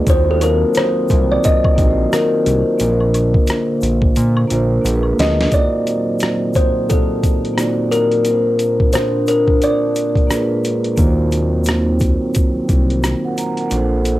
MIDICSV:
0, 0, Header, 1, 6, 480
1, 0, Start_track
1, 0, Tempo, 681818
1, 50, Time_signature, 4, 2, 24, 8
1, 9994, End_track
2, 0, Start_track
2, 0, Title_t, "Kalimba"
2, 0, Program_c, 0, 108
2, 68, Note_on_c, 0, 72, 95
2, 210, Note_off_c, 0, 72, 0
2, 217, Note_on_c, 0, 69, 93
2, 254, Note_off_c, 0, 69, 0
2, 304, Note_on_c, 0, 70, 85
2, 544, Note_off_c, 0, 70, 0
2, 546, Note_on_c, 0, 72, 100
2, 927, Note_on_c, 0, 74, 96
2, 936, Note_off_c, 0, 72, 0
2, 1009, Note_off_c, 0, 74, 0
2, 1021, Note_on_c, 0, 75, 123
2, 1504, Note_on_c, 0, 70, 82
2, 1510, Note_off_c, 0, 75, 0
2, 3389, Note_off_c, 0, 70, 0
2, 3660, Note_on_c, 0, 75, 97
2, 3879, Note_off_c, 0, 75, 0
2, 3899, Note_on_c, 0, 74, 94
2, 4617, Note_on_c, 0, 72, 88
2, 4636, Note_off_c, 0, 74, 0
2, 4837, Note_off_c, 0, 72, 0
2, 4855, Note_on_c, 0, 69, 97
2, 5572, Note_on_c, 0, 70, 90
2, 5594, Note_off_c, 0, 69, 0
2, 6291, Note_on_c, 0, 72, 85
2, 6312, Note_off_c, 0, 70, 0
2, 6534, Note_on_c, 0, 70, 78
2, 6537, Note_off_c, 0, 72, 0
2, 6779, Note_off_c, 0, 70, 0
2, 6784, Note_on_c, 0, 74, 92
2, 7469, Note_off_c, 0, 74, 0
2, 9994, End_track
3, 0, Start_track
3, 0, Title_t, "Vibraphone"
3, 0, Program_c, 1, 11
3, 0, Control_c, 1, 64, 127
3, 34, Note_on_c, 1, 58, 68
3, 47, Note_on_c, 1, 63, 64
3, 59, Note_on_c, 1, 65, 66
3, 60, Control_c, 1, 64, 0
3, 68, Note_on_c, 1, 66, 62
3, 78, Note_on_c, 1, 72, 77
3, 195, Control_c, 1, 64, 127
3, 645, Note_off_c, 1, 58, 0
3, 651, Note_off_c, 1, 63, 0
3, 658, Note_off_c, 1, 65, 0
3, 662, Note_off_c, 1, 66, 0
3, 667, Note_off_c, 1, 72, 0
3, 1232, Note_on_c, 1, 58, 75
3, 1242, Note_on_c, 1, 63, 72
3, 1251, Note_on_c, 1, 65, 74
3, 1265, Note_on_c, 1, 66, 65
3, 1275, Note_on_c, 1, 70, 66
3, 1318, Note_off_c, 1, 70, 0
3, 1321, Note_on_c, 1, 72, 85
3, 1687, Note_off_c, 1, 58, 0
3, 1691, Note_off_c, 1, 63, 0
3, 1696, Note_off_c, 1, 65, 0
3, 1703, Note_off_c, 1, 66, 0
3, 1731, Note_off_c, 1, 72, 0
3, 1955, Note_on_c, 1, 58, 72
3, 1966, Note_on_c, 1, 62, 64
3, 1978, Control_c, 1, 64, 0
3, 1978, Note_on_c, 1, 65, 63
3, 1987, Note_on_c, 1, 70, 70
3, 1999, Note_off_c, 1, 70, 0
3, 1999, Note_on_c, 1, 70, 64
3, 2041, Note_off_c, 1, 70, 0
3, 2045, Note_on_c, 1, 72, 75
3, 2116, Control_c, 1, 64, 127
3, 2566, Note_off_c, 1, 58, 0
3, 2571, Note_off_c, 1, 62, 0
3, 2577, Note_off_c, 1, 65, 0
3, 2611, Note_off_c, 1, 72, 0
3, 3149, Note_on_c, 1, 58, 85
3, 3162, Note_on_c, 1, 62, 84
3, 3173, Note_on_c, 1, 65, 77
3, 3184, Note_on_c, 1, 70, 81
3, 3194, Note_on_c, 1, 72, 100
3, 3381, Note_off_c, 1, 58, 0
3, 3389, Note_on_c, 1, 58, 99
3, 3396, Note_off_c, 1, 62, 0
3, 3404, Note_off_c, 1, 65, 0
3, 3405, Note_on_c, 1, 62, 87
3, 3413, Note_on_c, 1, 65, 81
3, 3417, Note_off_c, 1, 70, 0
3, 3419, Control_c, 1, 64, 0
3, 3422, Note_off_c, 1, 72, 0
3, 3423, Note_on_c, 1, 68, 83
3, 3435, Note_on_c, 1, 70, 78
3, 3478, Note_off_c, 1, 70, 0
3, 3483, Note_on_c, 1, 71, 107
3, 3541, Control_c, 1, 64, 127
3, 3805, Note_off_c, 1, 58, 0
3, 3813, Note_off_c, 1, 62, 0
3, 3817, Note_off_c, 1, 65, 0
3, 3822, Note_off_c, 1, 68, 0
3, 3852, Note_off_c, 1, 71, 0
3, 3869, Note_on_c, 1, 58, 65
3, 3881, Note_on_c, 1, 63, 57
3, 3891, Note_on_c, 1, 65, 57
3, 3898, Control_c, 1, 64, 0
3, 3902, Note_on_c, 1, 66, 60
3, 3913, Note_on_c, 1, 70, 58
3, 3957, Note_off_c, 1, 70, 0
3, 3960, Note_on_c, 1, 72, 68
3, 4041, Control_c, 1, 64, 127
3, 4482, Note_off_c, 1, 58, 0
3, 4489, Note_off_c, 1, 63, 0
3, 4493, Note_off_c, 1, 65, 0
3, 4499, Note_off_c, 1, 66, 0
3, 4528, Note_off_c, 1, 72, 0
3, 5304, Note_on_c, 1, 58, 72
3, 5317, Note_on_c, 1, 63, 65
3, 5328, Note_on_c, 1, 65, 65
3, 5341, Note_on_c, 1, 66, 64
3, 5352, Note_on_c, 1, 74, 80
3, 5619, Note_off_c, 1, 58, 0
3, 5625, Note_off_c, 1, 63, 0
3, 5631, Note_off_c, 1, 65, 0
3, 5637, Note_off_c, 1, 66, 0
3, 5642, Note_off_c, 1, 74, 0
3, 5797, Note_on_c, 1, 58, 68
3, 5808, Note_on_c, 1, 60, 48
3, 5817, Note_on_c, 1, 65, 57
3, 5818, Control_c, 1, 64, 0
3, 5829, Note_on_c, 1, 70, 62
3, 5844, Note_on_c, 1, 72, 68
3, 5853, Note_on_c, 1, 62, 65
3, 5865, Note_off_c, 1, 60, 0
3, 5950, Control_c, 1, 64, 127
3, 6407, Note_off_c, 1, 58, 0
3, 6417, Note_off_c, 1, 65, 0
3, 6422, Note_off_c, 1, 70, 0
3, 6430, Note_off_c, 1, 72, 0
3, 6434, Note_off_c, 1, 62, 0
3, 7230, Note_on_c, 1, 58, 73
3, 7240, Note_on_c, 1, 62, 71
3, 7257, Note_on_c, 1, 65, 65
3, 7260, Control_c, 1, 64, 0
3, 7267, Note_on_c, 1, 68, 68
3, 7276, Note_on_c, 1, 71, 78
3, 7362, Control_c, 1, 64, 127
3, 7541, Note_off_c, 1, 58, 0
3, 7547, Note_off_c, 1, 62, 0
3, 7555, Note_off_c, 1, 65, 0
3, 7560, Note_off_c, 1, 68, 0
3, 7565, Note_off_c, 1, 71, 0
3, 7717, Note_on_c, 1, 58, 85
3, 7725, Note_on_c, 1, 63, 76
3, 7739, Note_on_c, 1, 65, 77
3, 7740, Control_c, 1, 64, 0
3, 7746, Note_on_c, 1, 66, 75
3, 7760, Note_on_c, 1, 72, 89
3, 7848, Control_c, 1, 64, 127
3, 8326, Note_off_c, 1, 58, 0
3, 8331, Note_off_c, 1, 63, 0
3, 8337, Note_off_c, 1, 65, 0
3, 8341, Note_off_c, 1, 66, 0
3, 8348, Note_off_c, 1, 72, 0
3, 9325, Note_on_c, 1, 78, 67
3, 9331, Note_on_c, 1, 70, 49
3, 9410, Note_off_c, 1, 78, 0
3, 9413, Note_off_c, 1, 70, 0
3, 9417, Note_on_c, 1, 82, 71
3, 9553, Note_off_c, 1, 82, 0
3, 9567, Note_on_c, 1, 78, 64
3, 9574, Note_on_c, 1, 70, 53
3, 9634, Note_on_c, 1, 58, 78
3, 9643, Note_on_c, 1, 62, 71
3, 9657, Note_on_c, 1, 65, 79
3, 9658, Control_c, 1, 64, 0
3, 9669, Note_on_c, 1, 69, 67
3, 9680, Note_on_c, 1, 72, 83
3, 9781, Control_c, 1, 64, 127
3, 9790, Note_off_c, 1, 78, 0
3, 9793, Note_off_c, 1, 70, 0
3, 9994, Note_off_c, 1, 58, 0
3, 9994, Note_off_c, 1, 62, 0
3, 9994, Note_off_c, 1, 65, 0
3, 9994, Note_off_c, 1, 69, 0
3, 9994, Note_off_c, 1, 72, 0
3, 9994, End_track
4, 0, Start_track
4, 0, Title_t, "Analog synth pad"
4, 0, Program_c, 2, 89
4, 51, Note_on_c, 2, 54, 97
4, 53, Note_on_c, 2, 60, 80
4, 54, Note_on_c, 2, 51, 80
4, 1951, Note_off_c, 2, 54, 0
4, 1952, Note_off_c, 2, 60, 0
4, 1953, Note_off_c, 2, 51, 0
4, 1966, Note_on_c, 2, 50, 97
4, 1971, Note_on_c, 2, 58, 84
4, 3396, Note_off_c, 2, 58, 0
4, 3406, Note_on_c, 2, 56, 72
4, 3869, Note_off_c, 2, 50, 0
4, 3882, Note_on_c, 2, 54, 86
4, 3882, Note_on_c, 2, 60, 79
4, 3883, Note_off_c, 2, 56, 0
4, 3883, Note_on_c, 2, 51, 86
4, 3885, Note_on_c, 2, 46, 85
4, 5787, Note_off_c, 2, 51, 0
4, 5787, Note_off_c, 2, 54, 0
4, 5787, Note_off_c, 2, 60, 0
4, 5805, Note_on_c, 2, 62, 98
4, 5811, Note_on_c, 2, 58, 84
4, 7236, Note_off_c, 2, 58, 0
4, 7255, Note_on_c, 2, 56, 70
4, 7708, Note_off_c, 2, 62, 0
4, 7728, Note_off_c, 2, 56, 0
4, 7731, Note_on_c, 2, 60, 79
4, 7733, Note_on_c, 2, 54, 93
4, 7736, Note_on_c, 2, 51, 84
4, 9619, Note_off_c, 2, 46, 0
4, 9631, Note_off_c, 2, 60, 0
4, 9632, Note_off_c, 2, 54, 0
4, 9634, Note_off_c, 2, 51, 0
4, 9655, Note_on_c, 2, 69, 89
4, 9656, Note_on_c, 2, 62, 96
4, 9994, Note_off_c, 2, 62, 0
4, 9994, Note_off_c, 2, 69, 0
4, 9994, End_track
5, 0, Start_track
5, 0, Title_t, "Analog synth bass"
5, 0, Program_c, 3, 38
5, 52, Note_on_c, 3, 39, 115
5, 455, Note_off_c, 3, 39, 0
5, 777, Note_on_c, 3, 36, 99
5, 976, Note_off_c, 3, 36, 0
5, 1255, Note_on_c, 3, 34, 94
5, 1455, Note_off_c, 3, 34, 0
5, 1734, Note_on_c, 3, 36, 96
5, 1856, Note_off_c, 3, 36, 0
5, 1976, Note_on_c, 3, 34, 107
5, 2377, Note_off_c, 3, 34, 0
5, 2693, Note_on_c, 3, 34, 88
5, 2894, Note_off_c, 3, 34, 0
5, 2935, Note_on_c, 3, 46, 95
5, 3135, Note_off_c, 3, 46, 0
5, 3177, Note_on_c, 3, 34, 96
5, 3376, Note_off_c, 3, 34, 0
5, 3412, Note_on_c, 3, 34, 122
5, 3613, Note_off_c, 3, 34, 0
5, 3654, Note_on_c, 3, 38, 104
5, 3854, Note_off_c, 3, 38, 0
5, 7732, Note_on_c, 3, 39, 102
5, 8569, Note_off_c, 3, 39, 0
5, 8843, Note_on_c, 3, 36, 49
5, 8878, Note_off_c, 3, 36, 0
5, 8934, Note_on_c, 3, 36, 89
5, 9258, Note_off_c, 3, 36, 0
5, 9656, Note_on_c, 3, 34, 113
5, 9994, Note_off_c, 3, 34, 0
5, 9994, End_track
6, 0, Start_track
6, 0, Title_t, "Drums"
6, 47, Note_on_c, 9, 36, 99
6, 47, Note_on_c, 9, 42, 66
6, 48, Note_on_c, 9, 82, 64
6, 117, Note_off_c, 9, 42, 0
6, 118, Note_off_c, 9, 36, 0
6, 118, Note_off_c, 9, 82, 0
6, 290, Note_on_c, 9, 42, 61
6, 291, Note_on_c, 9, 76, 62
6, 291, Note_on_c, 9, 82, 48
6, 360, Note_off_c, 9, 42, 0
6, 361, Note_off_c, 9, 76, 0
6, 361, Note_off_c, 9, 82, 0
6, 520, Note_on_c, 9, 82, 68
6, 526, Note_on_c, 9, 42, 87
6, 545, Note_on_c, 9, 37, 113
6, 590, Note_off_c, 9, 82, 0
6, 597, Note_off_c, 9, 42, 0
6, 615, Note_off_c, 9, 37, 0
6, 762, Note_on_c, 9, 82, 50
6, 774, Note_on_c, 9, 36, 89
6, 779, Note_on_c, 9, 42, 71
6, 833, Note_off_c, 9, 82, 0
6, 845, Note_off_c, 9, 36, 0
6, 849, Note_off_c, 9, 42, 0
6, 1011, Note_on_c, 9, 82, 70
6, 1014, Note_on_c, 9, 42, 70
6, 1025, Note_on_c, 9, 36, 83
6, 1081, Note_off_c, 9, 82, 0
6, 1085, Note_off_c, 9, 42, 0
6, 1096, Note_off_c, 9, 36, 0
6, 1157, Note_on_c, 9, 36, 88
6, 1160, Note_on_c, 9, 76, 73
6, 1227, Note_off_c, 9, 36, 0
6, 1230, Note_off_c, 9, 76, 0
6, 1252, Note_on_c, 9, 42, 62
6, 1253, Note_on_c, 9, 36, 86
6, 1255, Note_on_c, 9, 82, 50
6, 1323, Note_off_c, 9, 42, 0
6, 1324, Note_off_c, 9, 36, 0
6, 1326, Note_off_c, 9, 82, 0
6, 1495, Note_on_c, 9, 82, 68
6, 1499, Note_on_c, 9, 37, 106
6, 1502, Note_on_c, 9, 42, 79
6, 1565, Note_off_c, 9, 82, 0
6, 1569, Note_off_c, 9, 37, 0
6, 1573, Note_off_c, 9, 42, 0
6, 1733, Note_on_c, 9, 42, 62
6, 1734, Note_on_c, 9, 82, 46
6, 1804, Note_off_c, 9, 42, 0
6, 1805, Note_off_c, 9, 82, 0
6, 1964, Note_on_c, 9, 82, 68
6, 1969, Note_on_c, 9, 42, 67
6, 2035, Note_off_c, 9, 82, 0
6, 2039, Note_off_c, 9, 42, 0
6, 2116, Note_on_c, 9, 76, 59
6, 2186, Note_off_c, 9, 76, 0
6, 2213, Note_on_c, 9, 42, 60
6, 2214, Note_on_c, 9, 76, 62
6, 2214, Note_on_c, 9, 82, 45
6, 2283, Note_off_c, 9, 42, 0
6, 2284, Note_off_c, 9, 76, 0
6, 2284, Note_off_c, 9, 82, 0
6, 2354, Note_on_c, 9, 36, 84
6, 2424, Note_off_c, 9, 36, 0
6, 2442, Note_on_c, 9, 82, 72
6, 2446, Note_on_c, 9, 42, 83
6, 2464, Note_on_c, 9, 37, 102
6, 2512, Note_off_c, 9, 82, 0
6, 2516, Note_off_c, 9, 42, 0
6, 2535, Note_off_c, 9, 37, 0
6, 2684, Note_on_c, 9, 82, 47
6, 2698, Note_on_c, 9, 42, 63
6, 2754, Note_off_c, 9, 82, 0
6, 2769, Note_off_c, 9, 42, 0
6, 2829, Note_on_c, 9, 36, 86
6, 2899, Note_off_c, 9, 36, 0
6, 2928, Note_on_c, 9, 82, 71
6, 2929, Note_on_c, 9, 42, 70
6, 2998, Note_off_c, 9, 82, 0
6, 3000, Note_off_c, 9, 42, 0
6, 3075, Note_on_c, 9, 76, 86
6, 3145, Note_off_c, 9, 76, 0
6, 3170, Note_on_c, 9, 82, 55
6, 3171, Note_on_c, 9, 42, 72
6, 3241, Note_off_c, 9, 42, 0
6, 3241, Note_off_c, 9, 82, 0
6, 3413, Note_on_c, 9, 82, 66
6, 3420, Note_on_c, 9, 42, 74
6, 3483, Note_off_c, 9, 82, 0
6, 3491, Note_off_c, 9, 42, 0
6, 3541, Note_on_c, 9, 76, 54
6, 3612, Note_off_c, 9, 76, 0
6, 3653, Note_on_c, 9, 82, 44
6, 3656, Note_on_c, 9, 42, 65
6, 3663, Note_on_c, 9, 38, 98
6, 3724, Note_off_c, 9, 82, 0
6, 3726, Note_off_c, 9, 42, 0
6, 3734, Note_off_c, 9, 38, 0
6, 3806, Note_on_c, 9, 38, 96
6, 3876, Note_off_c, 9, 38, 0
6, 3882, Note_on_c, 9, 82, 61
6, 3884, Note_on_c, 9, 42, 71
6, 3886, Note_on_c, 9, 36, 93
6, 3952, Note_off_c, 9, 82, 0
6, 3954, Note_off_c, 9, 42, 0
6, 3956, Note_off_c, 9, 36, 0
6, 4130, Note_on_c, 9, 82, 47
6, 4132, Note_on_c, 9, 42, 54
6, 4201, Note_off_c, 9, 82, 0
6, 4202, Note_off_c, 9, 42, 0
6, 4357, Note_on_c, 9, 82, 66
6, 4367, Note_on_c, 9, 42, 77
6, 4386, Note_on_c, 9, 37, 105
6, 4427, Note_off_c, 9, 82, 0
6, 4438, Note_off_c, 9, 42, 0
6, 4456, Note_off_c, 9, 37, 0
6, 4601, Note_on_c, 9, 82, 44
6, 4614, Note_on_c, 9, 36, 88
6, 4620, Note_on_c, 9, 42, 64
6, 4671, Note_off_c, 9, 82, 0
6, 4685, Note_off_c, 9, 36, 0
6, 4690, Note_off_c, 9, 42, 0
6, 4854, Note_on_c, 9, 82, 73
6, 4857, Note_on_c, 9, 42, 65
6, 4865, Note_on_c, 9, 36, 87
6, 4924, Note_off_c, 9, 82, 0
6, 4928, Note_off_c, 9, 42, 0
6, 4936, Note_off_c, 9, 36, 0
6, 5093, Note_on_c, 9, 36, 75
6, 5094, Note_on_c, 9, 42, 68
6, 5094, Note_on_c, 9, 82, 49
6, 5163, Note_off_c, 9, 36, 0
6, 5164, Note_off_c, 9, 42, 0
6, 5164, Note_off_c, 9, 82, 0
6, 5243, Note_on_c, 9, 42, 31
6, 5313, Note_off_c, 9, 42, 0
6, 5334, Note_on_c, 9, 37, 104
6, 5337, Note_on_c, 9, 42, 82
6, 5339, Note_on_c, 9, 82, 66
6, 5404, Note_off_c, 9, 37, 0
6, 5408, Note_off_c, 9, 42, 0
6, 5409, Note_off_c, 9, 82, 0
6, 5574, Note_on_c, 9, 82, 44
6, 5577, Note_on_c, 9, 42, 58
6, 5645, Note_off_c, 9, 82, 0
6, 5647, Note_off_c, 9, 42, 0
6, 5713, Note_on_c, 9, 42, 32
6, 5783, Note_off_c, 9, 42, 0
6, 5806, Note_on_c, 9, 42, 66
6, 5807, Note_on_c, 9, 82, 59
6, 5876, Note_off_c, 9, 42, 0
6, 5877, Note_off_c, 9, 82, 0
6, 6048, Note_on_c, 9, 42, 59
6, 6049, Note_on_c, 9, 82, 46
6, 6118, Note_off_c, 9, 42, 0
6, 6119, Note_off_c, 9, 82, 0
6, 6195, Note_on_c, 9, 36, 80
6, 6265, Note_off_c, 9, 36, 0
6, 6285, Note_on_c, 9, 42, 89
6, 6285, Note_on_c, 9, 82, 75
6, 6303, Note_on_c, 9, 37, 106
6, 6355, Note_off_c, 9, 42, 0
6, 6355, Note_off_c, 9, 82, 0
6, 6373, Note_off_c, 9, 37, 0
6, 6524, Note_on_c, 9, 82, 46
6, 6533, Note_on_c, 9, 42, 63
6, 6594, Note_off_c, 9, 82, 0
6, 6604, Note_off_c, 9, 42, 0
6, 6671, Note_on_c, 9, 36, 74
6, 6741, Note_off_c, 9, 36, 0
6, 6770, Note_on_c, 9, 42, 62
6, 6771, Note_on_c, 9, 82, 64
6, 6840, Note_off_c, 9, 42, 0
6, 6841, Note_off_c, 9, 82, 0
6, 7006, Note_on_c, 9, 82, 49
6, 7011, Note_on_c, 9, 42, 68
6, 7077, Note_off_c, 9, 82, 0
6, 7082, Note_off_c, 9, 42, 0
6, 7149, Note_on_c, 9, 36, 77
6, 7159, Note_on_c, 9, 42, 29
6, 7219, Note_off_c, 9, 36, 0
6, 7230, Note_off_c, 9, 42, 0
6, 7254, Note_on_c, 9, 82, 70
6, 7255, Note_on_c, 9, 37, 107
6, 7258, Note_on_c, 9, 42, 82
6, 7324, Note_off_c, 9, 82, 0
6, 7325, Note_off_c, 9, 37, 0
6, 7328, Note_off_c, 9, 42, 0
6, 7491, Note_on_c, 9, 82, 47
6, 7496, Note_on_c, 9, 42, 64
6, 7561, Note_off_c, 9, 82, 0
6, 7566, Note_off_c, 9, 42, 0
6, 7634, Note_on_c, 9, 42, 36
6, 7704, Note_off_c, 9, 42, 0
6, 7723, Note_on_c, 9, 82, 59
6, 7726, Note_on_c, 9, 36, 106
6, 7726, Note_on_c, 9, 42, 67
6, 7793, Note_off_c, 9, 82, 0
6, 7797, Note_off_c, 9, 36, 0
6, 7797, Note_off_c, 9, 42, 0
6, 7966, Note_on_c, 9, 82, 42
6, 7971, Note_on_c, 9, 42, 55
6, 8036, Note_off_c, 9, 82, 0
6, 8041, Note_off_c, 9, 42, 0
6, 8195, Note_on_c, 9, 82, 68
6, 8209, Note_on_c, 9, 42, 85
6, 8227, Note_on_c, 9, 37, 109
6, 8265, Note_off_c, 9, 82, 0
6, 8279, Note_off_c, 9, 42, 0
6, 8298, Note_off_c, 9, 37, 0
6, 8443, Note_on_c, 9, 82, 52
6, 8454, Note_on_c, 9, 36, 90
6, 8457, Note_on_c, 9, 42, 67
6, 8513, Note_off_c, 9, 82, 0
6, 8525, Note_off_c, 9, 36, 0
6, 8527, Note_off_c, 9, 42, 0
6, 8689, Note_on_c, 9, 82, 70
6, 8692, Note_on_c, 9, 42, 68
6, 8704, Note_on_c, 9, 36, 84
6, 8760, Note_off_c, 9, 82, 0
6, 8762, Note_off_c, 9, 42, 0
6, 8775, Note_off_c, 9, 36, 0
6, 8932, Note_on_c, 9, 82, 50
6, 8933, Note_on_c, 9, 36, 83
6, 8933, Note_on_c, 9, 42, 63
6, 9002, Note_off_c, 9, 82, 0
6, 9004, Note_off_c, 9, 36, 0
6, 9004, Note_off_c, 9, 42, 0
6, 9083, Note_on_c, 9, 42, 32
6, 9154, Note_off_c, 9, 42, 0
6, 9175, Note_on_c, 9, 82, 69
6, 9179, Note_on_c, 9, 37, 108
6, 9182, Note_on_c, 9, 42, 78
6, 9246, Note_off_c, 9, 82, 0
6, 9249, Note_off_c, 9, 37, 0
6, 9253, Note_off_c, 9, 42, 0
6, 9416, Note_on_c, 9, 82, 47
6, 9418, Note_on_c, 9, 42, 65
6, 9486, Note_off_c, 9, 82, 0
6, 9488, Note_off_c, 9, 42, 0
6, 9555, Note_on_c, 9, 42, 35
6, 9625, Note_off_c, 9, 42, 0
6, 9649, Note_on_c, 9, 82, 64
6, 9652, Note_on_c, 9, 42, 66
6, 9719, Note_off_c, 9, 82, 0
6, 9722, Note_off_c, 9, 42, 0
6, 9890, Note_on_c, 9, 82, 43
6, 9893, Note_on_c, 9, 42, 58
6, 9960, Note_off_c, 9, 82, 0
6, 9964, Note_off_c, 9, 42, 0
6, 9994, End_track
0, 0, End_of_file